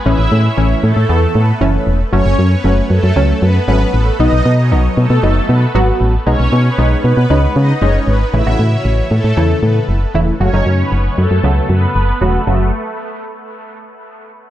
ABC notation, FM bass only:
X:1
M:4/4
L:1/16
Q:1/4=116
K:F#dor
V:1 name="FM bass" clef=bass
A,,, A,,, A,,2 A,,,2 A,, A,, E,,2 A,,2 F,,,2 E,,,2 | F,,, F,,, F,,2 F,,,2 F,, F,, C,,2 F,,2 G,,,2 A,,,2 | B,,, B,,, B,,2 B,,,2 B,, B,, F,,,2 B,,2 G,,,2 A,,,2 | B,,, B,,, B,,2 B,,,2 B,, B,, C,,2 C,2 F,,,2 G,,,2 |
A,,, A,,, A,,2 A,,,2 A,, A,, E,,2 A,,2 F,,,2 E,,,2 | F,,, F,,, F,,2 F,,,2 F,, F,, C,,2 F,,2 F,,,2 E,,,2 | F,,,2 z12 z2 |]